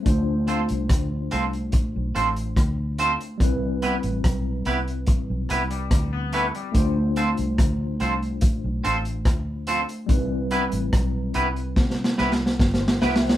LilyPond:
<<
  \new Staff \with { instrumentName = "Clean electric guitar" } { \time 4/4 \key c \major \tempo 4 = 72 r8 <c' f' a' c''>8 r8 <c' f' a' c''>8 r8 <c' f' a' c''>8 r8 <c' f' a' c''>8 | r8 <b e' g' b'>8 r8 <b e' g' b'>8 r8 <b e' g' b'>8 r8 <b e' g' b'>8 | r8 <c' f' a' c''>8 r8 <c' f' a' c''>8 r8 <c' f' a' c''>8 r8 <c' f' a' c''>8 | r8 <b e' g' b'>8 r8 <b e' g' b'>8 r8 <b e' g' b'>8 r8 <b e' g' b'>8 | }
  \new Staff \with { instrumentName = "Tine electric piano" } { \time 4/4 \key c \major <a d' f' c''>1 | <g c' e' b'>1 | <a d' f' c''>1 | <g c' ees' e' b'>2. r16 c''16 e''16 g''16 | }
  \new Staff \with { instrumentName = "Clean electric guitar" } { \clef bass \time 4/4 \key c \major r1 | r2 r8. g8 b16 a16 g16~ | g16 r2. r8. | r1 | }
  \new Staff \with { instrumentName = "Fingered electric bass" } { \clef bass \time 4/4 \key c \major d,8. c,16 d,8 c,8 r16 b,,16 a,,8 d,8. r16 | c,8. a,,16 b,,8 c,8 r16 b,,16 c,8 d,8. r16 | d,8. c,16 d,8 c,8 r16 b,,16 a,,8 d,8. r16 | c,8. a,,16 b,,8 c,8 c8 c,8 g,,8 c,8 | }
  \new DrumStaff \with { instrumentName = "Drums" } \drummode { \time 4/4 <hh bd>8 hh16 hh16 <hh bd ss>8 hh16 hh16 <hh bd>8 hh16 hh16 <hh bd ss>8 hh16 hh16 | <hh bd>8 hh16 hh16 <hh bd ss>8 hh16 hh16 <hh bd>8 <hh ss>16 hh16 <hh bd ss>8 hh16 hh16 | <hh bd>8 hh16 hh16 <hh bd ss>8 hh16 hh16 <hh bd>8 hh16 hh16 <hh bd ss>8 hh16 hh16 | <hh bd>8 hh16 hh16 <hh bd ss>8 hh16 hh16 \tuplet 3/2 { <bd sn>16 sn16 sn16 sn16 sn16 sn16 <bd sn>16 sn16 sn16 sn16 sn16 sn16 } | }
>>